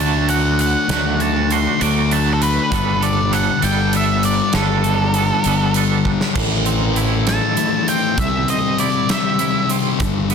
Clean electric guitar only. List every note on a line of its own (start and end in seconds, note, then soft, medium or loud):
0.00 0.60 D3 medium
0.00 0.26 F#3 medium
0.00 0.28 A3 medium
0.00 0.29 D4 medium
0.00 0.30 F#4 medium
0.27 0.88 F#3 medium
0.27 0.90 A3 medium
0.27 0.91 D4 medium
0.27 0.91 F#4 medium
0.88 1.50 D3 medium
0.88 1.48 F#3 medium
0.88 1.22 A3 medium
0.88 1.21 D4 medium
0.88 1.18 F#4 medium
1.19 1.50 A3 medium
1.19 1.51 D4 medium
1.19 1.51 F#4 medium
1.49 1.81 F#3 medium
1.49 1.81 A3 medium
1.49 1.80 D4 medium
1.49 1.78 F#4 medium
1.79 2.43 D3 medium
1.79 2.09 F#3 medium
1.79 2.11 A3 medium
1.79 2.12 D4 medium
1.79 2.13 F#4 medium
2.10 2.69 F#3 medium
2.10 2.71 A3 medium
2.10 2.72 D4 medium
2.10 2.71 F#4 medium
2.70 3.30 G3 medium
2.70 3.04 B3 medium
2.70 3.02 D4 medium
2.74 3.00 A4 medium
3.01 3.32 B3 medium
3.01 3.33 D4 medium
3.01 3.34 A4 medium
3.31 3.64 G3 medium
3.31 3.63 B3 medium
3.31 3.62 D4 medium
3.31 3.62 A4 medium
3.62 3.92 G3 medium
3.62 3.93 B3 medium
3.62 3.94 D4 medium
3.62 3.96 A4 medium
3.93 4.52 G3 medium
3.93 4.53 B3 medium
3.93 4.54 D4 medium
3.93 4.55 A4 medium
4.53 5.12 G3 medium
4.53 4.85 B3 medium
4.53 4.84 D4 loud
4.53 4.82 A4 medium
4.83 5.14 B3 medium
4.83 5.15 D4 medium
4.83 5.16 A4 medium
5.14 5.47 G3 medium
5.14 5.46 B3 medium
5.14 5.45 D4 medium
5.14 5.43 A4 medium
5.45 5.73 G3 medium
5.45 5.74 B3 medium
5.45 5.75 D4 medium
5.45 5.76 A4 medium
5.74 6.34 G3 medium
5.74 6.34 B3 medium
5.74 6.35 D4 medium
5.74 6.35 A4 medium
6.36 7.88 A2 medium
6.66 7.87 C4 medium
6.97 7.57 E4 medium
7.27 8.19 A4 medium
7.58 8.18 E4 medium
7.88 8.19 C4 medium
8.18 9.70 C3 medium
8.49 9.69 C4 medium
8.79 9.39 E4 medium
9.10 10.35 G4 medium
9.40 10.01 E4 medium
9.71 10.01 C4 medium
10.00 10.35 G2 medium
10.31 10.35 B3 medium